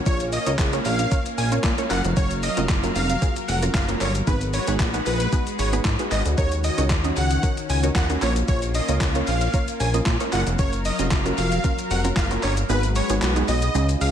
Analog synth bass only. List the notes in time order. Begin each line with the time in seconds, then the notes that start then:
0.06 A#1
0.47 C#2
0.59 C#2
0.85 A#1
1.38 A#1
1.64 A#2
1.91 F#1
2.04 F1
2.17 F#1
2.57 F1
2.70 F#1
2.96 F1
3.48 F1
3.75 F#1
4.01 G1
4.27 G#1
4.68 G#1
4.80 A#1
5.06 A#1
5.59 G#1
5.85 G#2
6.12 G#1
6.26 D2
6.38 D#2
6.78 C#2
6.91 D#2
7.17 C#2
7.70 C#2
7.96 D#2
8.22 A#1
8.48 A#1
8.89 C#2
9.01 C#2
9.28 A#1
9.80 A#1
10.06 A#2
10.33 F#1
10.47 F1
10.59 F#1
10.99 F1
11.12 F#1
11.38 F1
11.91 F1
12.17 F#1
12.43 G1
12.69 G#1
13.10 G#1
13.22 B1
13.48 B1
13.75 C#2
14.01 C#2